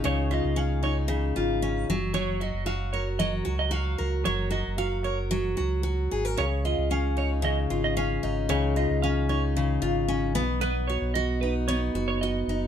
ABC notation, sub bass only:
X:1
M:4/4
L:1/16
Q:1/4=113
K:Dbmix
V:1 name="Sub bass" clef=bass
D,,3 D,,6- D,, A,,,4 G,,,2- | G,,,3 G,,,6- G,,, D,,4 D,,2 | G,,,3 G,,,6- G,,, D,,4 A,,,2 | D,,3 D,,6- D,, A,,,4 A,,,2 |
D,,3 D,,6- D,, A,,,4 C,,2- | C,,3 C,,6- C,, G,,,4 G,,,2 |]